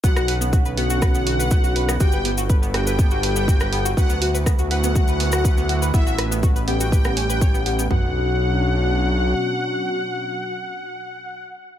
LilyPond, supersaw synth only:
\new Staff \with { instrumentName = "Supersaw synth" } { \time 4/4 \key b \minor \tempo 4 = 122 fis''8 r4 fis''2~ fis''8 | g''8 r4 g''2~ g''8 | fis''8 r4 fis''2~ fis''8 | e''8 r4 g''2~ g''8 |
fis''1~ | fis''1 | }